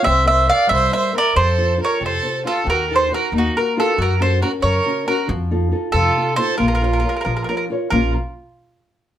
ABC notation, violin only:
X:1
M:6/8
L:1/8
Q:3/8=92
K:Bbm
V:1 name="Violin"
c c =d c c B | =A2 B A2 F | G =A G E G F | G =A G B2 G |
z3 F2 =A | F4- F z | F z4 z |]